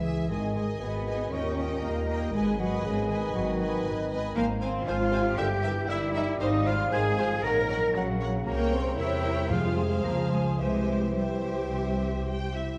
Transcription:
Already playing: C#2 C#3 E3 C#4 E4 G#4 E5
0.04 G#3 G#4 E5 G#5
0.28 G#1 G#2 D#3 G#3 G#4 D#5 G#5
0.54 D#3 G#3 G#4 D#5 G#5
0.79 G#1 B2 G#3 B3 G#4 B4 D#5 B5
1.06 D#3 G#4 D#5 G#5
1.31 D#2 A#2 D#3 C#4 G4 A#4 C#5 D#5 G5 C#6
1.57 A#2 A#3 A#4 D#5 G5
1.82 D#2 A#3 D#4 G4 A#4 D#5 A#5
2.09 A#3 A#4 D#5 G5 A#5
2.34 G#1 G#2 B2 G#3 G#4 B4 D#5 G#5
2.59 D#3 F#3 F#4 B4 D#5 F#5 G#5
2.84 G#1 C#3 G#3 B3 G#4 B4 D#5 G#5
3.10 D#3 B4 D#5 G#5
3.35 G#1 G#2 F#3 F#4 F#5
3.60 B3 B4 D#5 G#5
3.86 G#1 D#3
4.11 B3 B4 D#5 G#5
4.36 G#1 G#2 A#3 A#4 C5 F5 G#5 A#5
4.61 G#3 C4 C5 F5 G#5 C6
4.87 G#1 F3 C4 F4 C5 F5 G#5 F6
5.12 C3 G#3 C5 F5 G#5
5.37 G1 G2 D3 G4 A#4 E5 G5 G6
5.63 E3 G3 A#4 E5
5.88 G1 G3 A#3 E4 A#4 E5 E6
6.13 G3 E4 A#4 E5 E6
6.40 G#1 G#2 D#4 C5 D#5 F5 D#6
6.66 G#3 F4 C5 F5 F6
6.91 G#1 D#3 C4 G#4 C5 F5 G#5 G#6
7.18 F3 G#3 C5 F5
7.43 A#1 A#2 D#3 A#4 C#5 F#5 A#5 A#6
7.70 F#3 A#4 C#5 F#5
7.95 A#1 C#3 F#3 A#3 F#4 A#4 C#5 F#5
8.21 F#3 A#4 C#5 F#5
8.46 C2 C3 A#3 A#4 C#5 G5 A#5
8.72 G3 C4 C5 C6
8.98 E2 C3 A#3 E4 A#4 C#5 E5 G5 E6
9.24 G3
9.50 F2 C3 F3 F4 G#4 C5 F5 F6
9.76 G#3 G#4 G#5
10.03 C#2 F3 A#3 F4 A#4 A#5
10.30 G#3 G#4 G#5
10.59 C2 C3 E3 G#3 G4 G#4 C5 E5 G#5
10.88 G3
11.15 G3 C4 G4 C5 E5 G5
11.44 G3
11.72 C3
11.99 C4
12.27 G3 G4 G5
12.55 C4 E4 E5

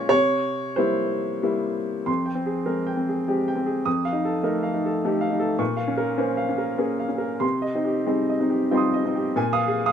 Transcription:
Already playing: A#2 G#3 C#4 F4 C#5 D#5
0.09 C3 C#5
0.76 G3 A#3 E4 C5
1.43 G3 A#3 E4
2.06 F2 C6
2.26 G5
2.35 C4
2.46 G#4
2.66 G#3 C4 A#4
2.87 G5
2.97 C4
3.09 G#4
3.28 G#3 C4 G4
3.48 G5
3.55 C4
3.66 G#4
3.85 F2 D#6
4.05 F5
4.13 D#4
4.25 A4
4.43 A3 D#4 A#4
4.63 F5
4.74 D#4
4.86 A4
5.05 A3 D#4 G4
5.21 F5
5.31 D#4
5.40 A4
5.59 A#2 C#6
5.77 F5
5.87 C#4
5.97 A#4
6.18 A#3 C#4 C5
6.37 F5
6.49 C#4
6.58 A#4
6.78 A#3 C#4 G#4
6.99 F5
7.08 C#4
7.18 A#4
7.40 C3 C6
7.62 D#5
7.74 C4 D#4
7.85 G4
8.06 G3 C4 D#4 G#4
8.29 D#5
8.40 C4 D#4
8.50 G4
8.71 G3 C4 D#4 F4 G5 C6
8.77 D#6
8.94 D#5
9.05 C4 D#4
9.15 G4
9.36 A#2 G#5
9.53 F5 D#6
9.68 G#4
9.86 F5 D#6

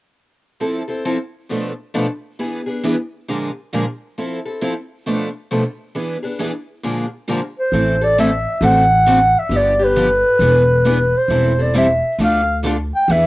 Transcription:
0.60 F3 C4 E4 A4
0.88 C4 E4 A4
1.05 F3 C4 E4 A4
1.49 B2 F3 A3 D4 A4 B4
1.94 B2 F3 A3 D4 A4 B4
2.39 E3 B3 D4 G#4 B4
2.66 B3 D4 G#4
2.83 E3 B3 D4 G#4 B4
3.28 A#2 D3 F3 G#3 A#3 D4 F4 G#4 A#4
3.73 A#2 D3 F3 G#3 A#3 D4 F4 G#4 A#4
4.18 F3 C4 E4 A4
4.45 C4 E4 A4
4.62 F3 C4 E4 A4
5.06 B2 F3 A3 D4 A4 B4
5.51 B2 F3 A3 D4 A4 B4
5.95 E3 B3 D4 G#4 B4
6.23 B3 D4 G#4
6.39 E3 B3 D4 G#4 B4
6.83 A#2 D3 F3 G#3 A#3 D4 F4 G#4 A#4
7.28 A#2 D3 F3 G#3 A#3 D4 F4 G#4 A#4
7.59 C5
7.72 A1 E3 A3 C4 E4 A4
8.01 C4 E4 A4 D5
8.18 E3 A3 C4 E4 A4 E5
8.61 A1 D3 A3 C4 F#4 A4 F#5
9.07 D3 A3 C4 F#4 A4
9.39 E5
9.49 G1 D3 F3 B3 D4 G4
9.56 D5
9.79 B3 D4 G4
9.84 B4
9.96 D3 F3 B3 D4 G4
10.39 E1 E3 B3 D4 G#4 B4
10.86 E3 B3 D4 G#4 B4
11.17 C5
11.28 E1 E3 G3 C4 E4 A4
11.58 C4 E4 A4 D5
11.75 E3 G3 C4 E4 A4 E5
12.19 D2 D3 A3 D4 F4 A4
12.24 F5
12.65 D3 A3 D4 F4 A4
12.95 G5
13.08 E2 E3 B3 D4 G#4 B4 E5

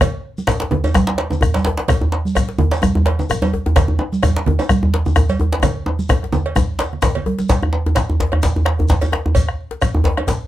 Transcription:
0.01 bombo rim, bombo low, cowbell, low conga, djembe bass, shekere
0.38 djembe slap, high conga, shekere
0.47 bombo rim, bombo low, cowbell, djembe slap, djembe bass, shekere
0.60 djembe slap
0.62 djembe slap
0.71 bombo rim, djembe tone, low conga
0.84 cowbell, djembe bass, shekere
0.94 bombo rim, bombo low, djembe slap, high conga, djembe bass, shekere
1.07 bombo rim, djembe slap
1.18 cowbell, djembe slap, high conga
1.31 djembe tone, low conga, shekere
1.41 bombo rim, bombo low, djembe bass, shekere
1.54 cowbell, djembe slap, high conga, shekere
1.65 djembe slap
1.67 djembe slap, djembe tone
1.77 djembe slap
1.79 djembe slap
1.88 bombo rim, bombo low, cowbell, djembe tone, low conga, djembe bass, shekere
2.01 djembe bass
2.12 djembe slap
2.25 djembe slap, high conga, shekere
2.35 bombo rim, bombo low, cowbell, djembe bass, shekere
2.49 djembe slap
2.59 bombo rim, djembe tone, djembe bass, low conga
2.71 cowbell, djembe slap, high conga, shekere
2.82 bombo rim, bombo low, djembe slap, djembe tone, high conga, djembe bass, shekere
2.95 bombo rim, djembe bass
3.06 cowbell, djembe slap
3.19 djembe tone, low conga, shekere
3.30 bombo rim, bombo low, djembe bass, shekere
3.42 cowbell, djembe tone, high conga, shekere
3.54 djembe slap, djembe tone
3.66 djembe slap, djembe bass
3.76 bombo rim, bombo low, cowbell, djembe slap, djembe bass, low conga, shekere
3.88 djembe bass
3.99 djembe tone
4.13 djembe slap, high conga, shekere
4.23 bombo rim, bombo low, cowbell, djembe bass, shekere
4.36 djembe slap
4.46 bombo rim, djembe tone, low conga, djembe bass
4.59 cowbell, djembe tone, shekere
4.69 bombo rim, bombo low, djembe slap, high conga, djembe bass, shekere
4.83 bombo rim, djembe bass
4.94 djembe slap
5.06 low conga, djembe bass, shekere
5.16 bombo rim, bombo low, djembe tone, djembe bass, shekere
5.29 cowbell, high conga, shekere
5.40 djembe slap, djembe tone, djembe bass
5.53 djembe slap
5.63 bombo rim, bombo low, cowbell, djembe tone, low conga, djembe bass, shekere
5.77 djembe slap
5.86 djembe tone
5.99 high conga, shekere
6.09 bombo rim, bombo low, cowbell, djembe tone, high conga, djembe bass, shekere
6.23 bombo rim, djembe slap, high conga
6.32 djembe tone, low conga, shekere
6.46 cowbell
6.56 bombo rim, bombo low, djembe slap, djembe tone, high conga, djembe bass, shekere
6.79 cowbell, djembe slap, shekere
6.93 bombo rim, djembe slap, low conga
7.02 bombo rim, bombo low, djembe slap, low conga, djembe bass, shekere
7.15 cowbell, low conga
7.26 bombo rim, djembe tone, high conga
7.39 djembe slap, high conga, shekere
7.49 bombo low, cowbell, djembe slap, djembe bass, shekere
7.63 bombo rim, djembe slap, djembe bass
7.73 djembe slap
7.86 djembe slap, djembe bass
7.95 bombo rim, bombo low, cowbell, djembe slap, shekere
8.10 djembe bass
8.20 bombo rim, djembe slap, djembe tone, djembe bass
8.32 bombo rim, cowbell, djembe bass
8.43 bombo low, djembe slap, shekere
8.56 djembe slap, djembe bass
8.65 bombo rim, cowbell, djembe slap
8.79 djembe bass
8.88 bombo low, djembe slap, shekere
9.01 bombo rim, cowbell, djembe slap, djembe bass, shekere
9.12 bombo rim, djembe slap, djembe tone
9.25 bombo rim, djembe slap, djembe bass
9.35 bombo low, cowbell, djembe slap, djembe bass, shekere
9.48 bombo rim, djembe slap
9.71 djembe slap
9.82 bombo rim, bombo low, cowbell, shekere
9.95 djembe bass
10.04 bombo rim, djembe slap, djembe tone, djembe bass
10.17 bombo rim, cowbell, djembe tone
10.27 bombo low, djembe slap, shekere

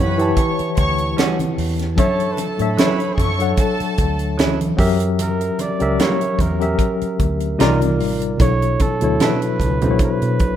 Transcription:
Already playing: F#2 E3 E4 G4 B4 C#5 F#5 G5 B5
0.00 C#5
0.18 E3 E4 G4 C#5 A5, closed hi-hat
0.36 C#5 C#6, kick, closed hi-hat, muted conga
0.59 muted fingered electric bass stroke, closed hi-hat
0.76 D2 C#5 C#6, kick, closed hi-hat
0.98 closed hi-hat
1.17 G3 C#4 F#4, snare, closed hi-hat, high conga
1.39 closed hi-hat, high conga
1.58 E2, open hi-hat
1.79 snare, closed hi-hat
1.96 F#2 F#3 D4 A4 C#5 E5 A5, kick, closed hi-hat, muted conga
2.20 closed hi-hat
2.33 B4
2.37 A4, closed hi-hat, muted conga
2.58 A2 F#3 D4 A4 C#5 E5, closed hi-hat
2.77 F#3 C#4 E4 B4 C#5 B5, snare, closed hi-hat, high conga
3.00 closed hi-hat
3.14 G#4 C#5 C#6, kick
3.18 F#2 A4, closed hi-hat, muted conga
3.39 F#3 D4 A4 C#5 F#5, closed hi-hat
3.57 A4 A5, kick, closed hi-hat
3.80 muted fingered electric bass stroke, closed hi-hat
3.98 D2, kick, closed hi-hat
4.19 closed hi-hat
4.38 F#3 C#4 E4, snare, closed hi-hat, high conga
4.61 closed hi-hat, high conga
4.77 F#2 F#3 C#4 G4 A#4 E5, kick, open hi-hat
5.00 closed hi-hat
5.19 A#4, closed hi-hat, muted conga
5.41 closed hi-hat
5.59 D5, closed hi-hat, muted conga
5.79 C#2 F#3 C#4 G4 A#4 E5, closed hi-hat
5.99 G3 A#3 E4 C#5, snare, closed hi-hat, high conga
6.21 closed hi-hat
6.39 E2 A#4, kick, closed hi-hat, muted conga
6.59 F#3 C#4 G4 A#4 E5, closed hi-hat
6.79 kick, closed hi-hat
7.01 muted fingered electric bass stroke, closed hi-hat
7.19 D2, kick, closed hi-hat
7.40 closed hi-hat
7.58 C2 C3 G3 D#4 F4 A#4 D5, snare, closed hi-hat, high conga
7.81 closed hi-hat, high conga
8.00 A1, open hi-hat
8.22 closed hi-hat
8.38 B1 B2 F#3 D4 E4 A4 C#5, kick, closed hi-hat, muted conga
8.62 closed hi-hat
8.79 A4, kick, closed hi-hat, muted conga
9.00 D2 B2 F#3 D4 E4 A4 C#5, closed hi-hat
9.20 D4 E4 A4 B4, snare, closed hi-hat, high conga
9.42 closed hi-hat
9.60 C#2, kick, closed hi-hat, muted conga
9.81 B2 F#3 D4 E4 A4 C5, closed hi-hat, low conga
9.91 C#5
9.99 kick, closed hi-hat, muted conga
10.04 B4
10.22 B2, closed hi-hat
10.39 B1, kick, closed hi-hat

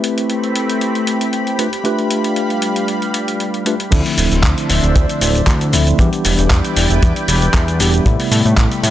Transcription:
Already playing: A3 C4 E4 G4 B4 B5
0.04 closed hi-hat
0.18 closed hi-hat
0.30 closed hi-hat
0.44 closed hi-hat
0.56 closed hi-hat
0.70 closed hi-hat
0.81 closed hi-hat
0.95 closed hi-hat
1.07 closed hi-hat
1.21 closed hi-hat
1.33 closed hi-hat
1.47 closed hi-hat
1.59 G3 A3 D4 F4 G4 B4 F5, closed hi-hat
1.73 closed hi-hat
1.84 A3 D4 F4 G4 B4, closed hi-hat
1.99 closed hi-hat
2.11 closed hi-hat
2.24 closed hi-hat
2.36 closed hi-hat
2.50 closed hi-hat
2.62 closed hi-hat
2.76 closed hi-hat
2.88 closed hi-hat
3.02 closed hi-hat
3.14 closed hi-hat
3.28 closed hi-hat
3.40 closed hi-hat
3.54 closed hi-hat
3.66 A3 D4 F4 G4 B4, closed hi-hat
3.80 closed hi-hat
3.91 D2 D3 F3 A3 C4 D4 E4 C5 E5, kick, closed hi-hat, crash, shaker
4.06 open hi-hat, shaker
4.18 D1, open hi-hat, shaker
4.32 D1, closed hi-hat, shaker
4.43 D2, kick, clap, closed hi-hat, shaker
4.58 closed hi-hat, shaker
4.70 D1, open hi-hat, shaker
4.83 D1, closed hi-hat, shaker
4.96 D2, kick, closed hi-hat, shaker
5.09 closed hi-hat, shaker
5.21 D1, open hi-hat, shaker
5.35 closed hi-hat, shaker
5.47 D2, kick, clap, closed hi-hat, shaker
5.61 closed hi-hat, shaker
5.73 D1 D3 F3 A3 C4 E4, open hi-hat, shaker
5.87 closed hi-hat, shaker
5.98 E2 E3 G3 B3 D4 E4 G4 B4 D5 G5, kick, closed hi-hat, shaker
6.13 closed hi-hat, shaker
6.25 E1, open hi-hat, shaker
6.39 E1, closed hi-hat, shaker
6.50 E2, kick, clap, closed hi-hat, shaker
6.65 closed hi-hat, shaker
6.76 E1, open hi-hat, shaker
6.90 E1, closed hi-hat, shaker
7.03 E2, kick, closed hi-hat, shaker
7.16 closed hi-hat, shaker
7.28 E1, open hi-hat, shaker
7.42 closed hi-hat, shaker
7.54 E2, kick, clap, closed hi-hat, shaker
7.68 closed hi-hat, shaker
7.79 E1 E3 G3 B3 D4 G4, open hi-hat, shaker
7.94 closed hi-hat, shaker
8.05 A1 C3 G3 A3 B3 E4 G4 B5, kick, closed hi-hat, shaker
8.20 open hi-hat, shaker
8.31 A2, open hi-hat, shaker
8.45 A2, closed hi-hat, shaker
8.57 A1, kick, clap, closed hi-hat, shaker
8.72 closed hi-hat, shaker
8.83 A2, open hi-hat, shaker

